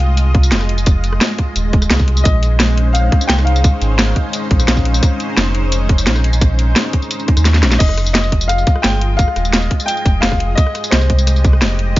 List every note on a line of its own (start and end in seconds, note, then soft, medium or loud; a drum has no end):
0.00 0.53 C2 medium
0.00 7.76 G#3 medium
0.00 2.21 F4 medium
0.00 2.21 D#5 medium
0.00 0.82 F5 medium
0.17 closed hi-hat medium
0.17 tambourine soft
0.35 kick loud
0.35 closed hi-hat medium
0.43 tambourine medium
0.52 1.20 F1 medium
0.52 snare loud
0.52 closed hi-hat medium
0.52 tambourine soft
0.61 cross-stick medium
0.61 tambourine soft
0.69 closed hi-hat medium
0.78 tambourine medium
0.86 kick loud
0.86 closed hi-hat medium
0.86 tambourine medium
1.04 closed hi-hat medium
1.04 tambourine soft
1.13 cross-stick medium
1.21 snare loud
1.21 closed hi-hat medium
1.21 tambourine medium
1.38 kick medium
1.38 closed hi-hat medium
1.56 1.90 D#1 loud
1.56 closed hi-hat medium
1.56 tambourine soft
1.73 kick loud
1.73 closed hi-hat medium
1.82 cross-stick soft
1.82 tambourine medium
1.90 1.99 C2 loud
1.90 snare loud
1.90 closed hi-hat medium
1.90 tambourine soft
1.99 2.24 C2 loud
1.99 kick medium
1.99 tambourine soft
2.08 cross-stick soft
2.08 closed hi-hat medium
2.17 tambourine medium
2.24 3.11 A#1 loud
2.24 7.76 C#4 medium
2.24 7.76 D#4 medium
2.24 7.76 C5 medium
2.24 2.96 D#5 loud
2.24 kick loud
2.24 closed hi-hat medium
2.24 tambourine medium
2.43 closed hi-hat medium
2.43 tambourine soft
2.60 snare loud
2.60 closed hi-hat medium
2.60 tambourine medium
2.77 closed hi-hat medium
2.93 3.30 F5 loud
2.93 closed hi-hat medium
2.93 tambourine soft
3.12 kick loud
3.12 closed hi-hat medium
3.21 tambourine medium
3.27 3.72 C2 loud
3.27 3.32 G5 loud
3.27 snare loud
3.27 closed hi-hat medium
3.27 tambourine soft
3.39 cross-stick soft
3.39 tambourine soft
3.45 7.41 F5 medium
3.45 closed hi-hat medium
3.56 tambourine medium
3.64 kick loud
3.64 closed hi-hat loud
3.64 tambourine medium
3.82 4.15 G#1 loud
3.82 closed hi-hat medium
3.82 tambourine soft
3.99 snare loud
3.99 closed hi-hat loud
3.99 tambourine medium
4.16 kick medium
4.16 closed hi-hat medium
4.33 closed hi-hat medium
4.33 tambourine medium
4.51 4.67 A#1 loud
4.51 kick loud
4.51 closed hi-hat medium
4.59 cross-stick soft
4.59 tambourine medium
4.68 5.01 A#1 medium
4.68 snare loud
4.68 closed hi-hat medium
4.68 tambourine medium
4.77 kick medium
4.77 tambourine soft
4.85 cross-stick soft
4.85 closed hi-hat medium
4.94 tambourine medium
5.03 kick loud
5.03 closed hi-hat loud
5.03 tambourine medium
5.20 closed hi-hat medium
5.20 tambourine soft
5.37 6.08 F1 medium
5.37 snare loud
5.37 closed hi-hat loud
5.37 tambourine medium
5.55 closed hi-hat medium
5.72 closed hi-hat loud
5.72 tambourine medium
5.89 kick loud
5.89 closed hi-hat medium
5.98 tambourine medium
6.07 6.75 A#1 medium
6.07 snare loud
6.07 closed hi-hat loud
6.07 tambourine medium
6.16 cross-stick medium
6.16 tambourine soft
6.24 closed hi-hat medium
6.33 tambourine medium
6.41 kick loud
6.41 closed hi-hat loud
6.41 tambourine medium
6.59 closed hi-hat medium
6.59 tambourine soft
6.76 snare loud
6.76 closed hi-hat loud
6.76 tambourine medium
6.93 kick medium
6.93 closed hi-hat medium
7.02 tambourine soft
7.11 closed hi-hat loud
7.11 tambourine medium
7.20 tambourine soft
7.28 kick loud
7.28 closed hi-hat medium
7.37 7.65 D#2 loud
7.37 cross-stick soft
7.37 tambourine medium
7.45 snare medium
7.45 closed hi-hat loud
7.45 tambourine soft
7.54 snare medium
7.54 tambourine soft
7.63 7.79 A#1 medium
7.63 snare medium
7.63 closed hi-hat medium
7.72 snare medium
7.72 tambourine medium
7.79 8.66 F1 loud
7.79 12.00 G#3 medium
7.79 10.55 F4 medium
7.79 8.12 D#5 loud
7.79 12.00 D#5 medium
7.79 kick loud
7.79 closed hi-hat loud
7.79 crash loud
7.79 tambourine soft
7.89 cross-stick soft
7.97 cross-stick soft
7.97 closed hi-hat medium
7.97 tambourine soft
8.06 tambourine medium
8.13 8.50 D#5 loud
8.13 snare loud
8.13 closed hi-hat loud
8.13 tambourine medium
8.24 tambourine soft
8.32 kick medium
8.32 closed hi-hat medium
8.41 tambourine medium
8.48 8.84 F5 loud
8.48 cross-stick soft
8.48 closed hi-hat loud
8.48 tambourine medium
8.58 tambourine soft
8.67 kick loud
8.67 closed hi-hat medium
8.67 tambourine soft
8.76 cross-stick medium
8.82 9.27 G1 medium
8.82 9.19 G5 loud
8.82 snare loud
8.82 closed hi-hat loud
8.82 tambourine medium
9.01 closed hi-hat medium
9.17 9.66 F5 loud
9.17 kick loud
9.17 closed hi-hat loud
9.17 tambourine soft
9.28 cross-stick soft
9.36 9.70 D#1 loud
9.36 cross-stick soft
9.36 closed hi-hat medium
9.36 tambourine soft
9.45 tambourine medium
9.53 snare loud
9.53 closed hi-hat medium
9.53 tambourine soft
9.62 tambourine soft
9.71 kick medium
9.71 closed hi-hat medium
9.80 tambourine medium
9.86 10.19 G5 loud
9.86 closed hi-hat loud
9.86 tambourine medium
9.97 tambourine soft
10.06 10.21 F1 loud
10.06 kick loud
10.06 closed hi-hat medium
10.06 tambourine soft
10.21 10.56 F1 medium
10.21 10.58 F5 loud
10.21 snare loud
10.21 closed hi-hat loud
10.21 tambourine soft
10.32 kick medium
10.32 cross-stick soft
10.40 closed hi-hat medium
10.55 12.00 G4 medium
10.55 10.92 D#5 loud
10.55 kick loud
10.55 closed hi-hat loud
10.55 tambourine soft
10.67 cross-stick soft
10.75 cross-stick soft
10.75 closed hi-hat medium
10.75 tambourine soft
10.84 tambourine medium
10.91 11.63 C2 medium
10.91 11.92 C5 medium
10.91 snare loud
10.91 closed hi-hat medium
10.91 tambourine medium
11.01 tambourine soft
11.10 kick medium
11.10 closed hi-hat medium
11.19 tambourine medium
11.27 cross-stick soft
11.27 closed hi-hat loud
11.27 tambourine soft
11.36 tambourine soft
11.45 kick loud
11.45 closed hi-hat medium
11.45 tambourine soft
11.53 cross-stick medium
11.62 12.00 F1 medium
11.62 snare loud
11.62 closed hi-hat loud
11.62 tambourine soft
11.79 closed hi-hat medium
11.96 kick loud
11.96 closed hi-hat loud
11.96 tambourine soft